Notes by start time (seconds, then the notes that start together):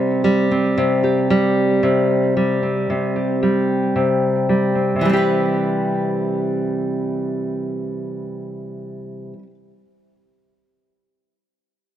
Already playing: C3 G3 C4 G4
0.24 G3
0.51 C4
0.78 C3
1.03 G4
1.30 G3
1.83 C3
2.37 G3
2.63 C4
2.90 C3
3.16 G4
3.43 G3
3.96 C3
4.49 G3
4.75 C4
4.96 C3
5.01 E3 G3
5.09 C4 G4
5.17 B4